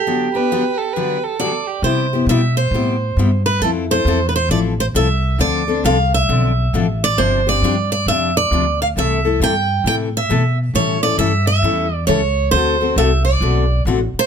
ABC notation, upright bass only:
X:1
M:4/4
L:1/8
Q:"Swing" 1/4=135
K:G
V:1 name="Upright bass" clef=bass
z8 | [K:C] C,2 B,,2 A,,2 G,,2 | F,,2 E,,2 A,,,2 C,,2 | D,,2 C,,2 B,,,2 A,,,2 |
G,,,2 G,,2 F,,2 D,,2 | C,,2 G,,2 A,,2 B,,2 | A,,2 G,,2 E,,2 ^C,,2 | D,,2 C,,2 B,,,2 A,,, z |]